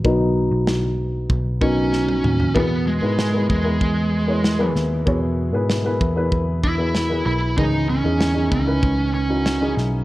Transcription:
<<
  \new Staff \with { instrumentName = "Upright piano" } { \time 4/4 \key e \major \tempo 4 = 96 r1 | <b e' gis' b'>8 r16 <b e' gis' b'>16 r16 <b e' gis' b'>16 r16 <b e' gis' b'>8. r16 <b e' gis' cis''>16 r16 <b e' gis' b'>8 r16 | <b e' gis' cis''>8 r16 <b e' gis' b'>16 r16 <b e' gis' b'>16 r16 <b e' gis' b'>8. r16 <b e' gis' b'>16 r16 <b e' gis' b'>8 r16 | <e cis' dis' gis'>8 r16 <cis' dis' e' gis'>16 r16 <cis' dis' e' gis'>16 r16 <cis' dis' e' b'>8. r16 <cis' dis' e' fis'>16 r16 <cis' dis' e' gis'>8 r16 | }
  \new Staff \with { instrumentName = "Upright piano" } { \clef bass \time 4/4 \key e \major <fis b dis'>4. r4 <fis b dis'>8 r4 | b,4. r2 r8 | b,4. r2 r8 | gis,4. r2 r8 | }
  \new Staff \with { instrumentName = "Lead electric guitar" } { \time 4/4 \key e \major r2 r8 cis'4. | b8 gis4 gis2 r8 | r2 r8 e'4 e'8 | dis'8 cis'4 cis'4 cis'4 r8 | }
  \new Staff \with { instrumentName = "Picked electric bass" } { \clef bass \time 4/4 \key e \major b,,8. b,,4~ b,,16 b,,4. dis,8 | e,8. gis,8. e,8 e,4. dis,8 | e,8. gis,8. e,8 e,4. b,,8 | cis,8. e,8. cis,8 cis,4. b,,8 | }
  \new DrumStaff \with { instrumentName = "Drums" } \drummode { \time 4/4 bd4 sn4 bd8 bd8 sn16 tommh16 toml16 tomfh16 | bd4 sn8 bd8 bd4 sn8 sn8 | bd4 sn8 bd8 bd8 bd8 sn4 | bd4 sn8 bd8 bd4 sn8 sn8 | }
>>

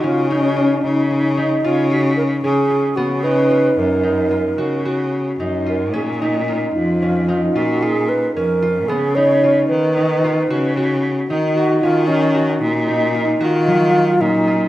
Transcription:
<<
  \new Staff \with { instrumentName = "Alto flute" } { \time 11/8 \key des \mixolydian \tempo 4 = 112 f'8 des'4 ees'4. f'8 ges'8 bes'8 aes'4 | ges'8 ces''4 bes'2 r4. bes'8 | aes'8 ees'4 f'4. ges'8 aes'8 ces''8 bes'4 | aes'8 des''4 ces''2 r4. ges'8 |
f'8 des'4 ees'4. f'4. ees'4 | }
  \new Staff \with { instrumentName = "Harp" } { \time 11/8 \key des \mixolydian des'8 ees'8 f'4 des'8 ees'8 f'8 f'4 des'8 f'8 | ces'8 ees'8 f'4 ees'8 f'8 ges'8 ges'4 ees'8 f'8 | des'8 ees'8 f'4 des'8 ees'8 f'8 f'4 des'8 f'8 | ces'8 ees'8 f'4 ees'8 f'8 ges'8 ges'4 ees'8 ges'8 |
des'8 f'8 ges'4 ees'8 f'8 ges'8 ges4 des'8 f'8 | }
  \new Staff \with { instrumentName = "Cello" } { \clef bass \time 11/8 \key des \mixolydian des4. des4. des4. des4 | des4. ges,4. des4. ges,4 | bes,4. f,4. bes,4. f,4 | des4. ees4. des4. ees4 |
ees4. bes,4. ees4. bes,4 | }
>>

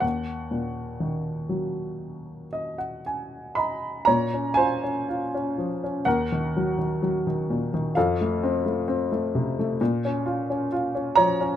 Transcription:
<<
  \new Staff \with { instrumentName = "Grand piano" } { \time 4/4 \key ees \minor \tempo 4 = 62 << { ges''2. r8 <ees'' ces'''>8 | \key bes \minor <des'' bes''>8 <c'' aes''>4. <bes' ges''>2 | <a' f''>2. r8 <des'' bes''>8 | } \\ { r2 r8 ees''16 ges''16 aes''8 bes''8 | r1 | r1 | } >> }
  \new Staff \with { instrumentName = "Grand piano" } { \clef bass \time 4/4 \key ees \minor ees,8 bes,8 ees8 ges2 r8 | \key bes \minor bes,16 des'16 f'16 des'16 f'16 des'16 f16 des'16 ees,16 ees16 ges16 ees16 ges16 ees16 bes,16 ees16 | f,16 a16 c'16 a16 c'16 a16 c16 a16 bes,16 des'16 f'16 des'16 f'16 des'16 f16 des'16 | }
>>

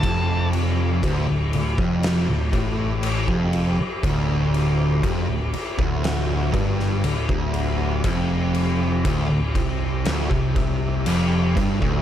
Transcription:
<<
  \new Staff \with { instrumentName = "Lead electric guitar" } { \time 4/4 \key d \minor \tempo 4 = 60 a''8 r2. r8 | r1 | r1 | }
  \new Staff \with { instrumentName = "Distorted electric guitar" } { \clef bass \time 4/4 \key d \minor f,4 d,16 d,16 d,16 f,8 d,16 a,8. f,8 r16 | d,4 f,16 d,16 r16 d,8. g,8 d,16 d,8. | f,4 d,16 d,16 c8 d,16 c16 c8 f,8 g,16 d,16 | }
  \new Staff \with { instrumentName = "Picked electric bass" } { \clef bass \time 4/4 \key d \minor f,,4 d,,16 d,,16 d,,16 f,,8 d,,16 a,,8. f,,8 r16 | d,,4 f,,16 d,,16 r16 d,,8. g,,8 d,,16 d,,8. | f,,4 d,,16 d,,16 c,8 d,,16 c,16 c,8 f,,8 g,,16 d,,16 | }
  \new DrumStaff \with { instrumentName = "Drums" } \drummode { \time 4/4 <cymc bd>8 cymc8 <cymc bd>8 cymc16 bd16 <cymc sn>8 <cymc bd>8 cymc16 bd16 cymc8 | <cymc bd>8 cymc8 <cymc bd>8 cymc16 bd16 <cymc sn>8 <cymc bd>16 sn16 cymc16 bd16 cymc8 | <cymc bd>8 cymc8 <cymc bd>8 <cymc bd>8 <cymc sn>16 bd16 <cymc bd>8 cymc8 <cymc bd>16 bd16 | }
>>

